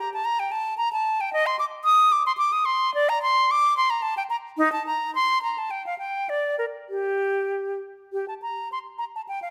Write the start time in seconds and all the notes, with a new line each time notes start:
0.00 A#5
0.14 A5
0.25 A#5
0.39 G5
0.52 A5
0.78 A#5
0.93 A5
1.21 G5
1.33 D#5
1.46 C6
1.59 D6
1.84 D#6
2.12 D6
2.26 C6
2.38 D6
2.52 D#6
2.65 C6
2.94 D5
3.09 A#5
3.23 C6
3.51 D6
3.77 C6
3.90 A#5
4.02 A5
4.17 G5
4.30 A#5
4.58 D#4
4.72 A5
4.87 A#5
5.15 C6
5.43 A#5
5.58 A5
5.71 G5
5.86 F5
5.98 G5
6.29 D5
6.58 A#4
6.89 G4
8.13 G4
8.28 A5
8.42 A#5
8.72 C6
8.98 A#5
9.16 A5
9.28 G5
9.42 F5